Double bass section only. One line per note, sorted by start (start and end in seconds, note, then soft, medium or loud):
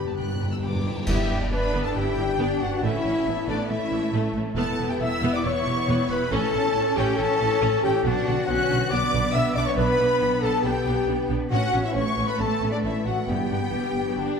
0.00 0.12 G1 medium
0.17 0.57 G1 medium
0.62 1.02 G1 medium
1.07 1.15 G1 medium
1.29 1.37 G1 medium
1.51 1.59 G1 medium
1.73 1.81 G1 medium
1.95 2.03 G1 medium
2.17 2.25 G1 medium
2.38 2.46 G1 medium
2.60 2.68 G1 medium
2.82 2.90 A1 medium
3.04 3.12 A1 medium
3.25 3.33 A1 medium
3.48 3.56 A1 medium
3.69 3.77 A1 medium
3.90 3.98 A1 medium
4.12 4.20 A1 medium
4.34 4.42 A1 medium
4.56 4.64 E1 loud
4.78 4.86 E1 medium
5.00 5.08 E1 medium
5.22 5.30 E1 loud
5.44 5.52 E1 medium
5.66 5.74 E1 medium
5.88 5.96 E1 loud
6.10 6.18 E1 medium
6.32 6.40 A1 loud
6.53 6.61 A1 medium
6.75 6.83 A1 medium
6.96 7.04 A1 loud
7.19 7.27 A1 medium
7.40 7.48 A1 medium
7.62 7.70 A1 loud
7.83 7.91 A1 medium
8.06 8.14 B1 loud
8.27 8.35 B1 medium
8.49 8.57 B1 medium
8.71 8.79 B1 medium
8.91 8.99 B1 loud
9.13 9.21 B1 medium
9.34 9.42 B1 loud
9.56 9.64 B1 medium
9.77 9.85 B1 loud
9.99 10.07 B1 medium
10.21 10.29 B1 medium
10.42 10.50 B1 medium
10.63 10.71 B1 medium
10.86 10.94 B1 medium
11.07 11.15 B1 medium
11.29 11.37 B1 medium
11.51 11.59 A1 loud
11.73 11.81 A1 medium
11.95 12.03 A1 medium
12.17 12.25 A1 medium
12.39 12.47 A1 medium
12.61 12.69 A1 medium
12.84 12.92 A1 medium
13.06 13.14 A1 medium
13.28 13.36 G1 medium
13.50 13.58 G1 medium
13.72 13.80 G1 medium
13.94 14.02 G1 medium
14.17 14.25 G1 medium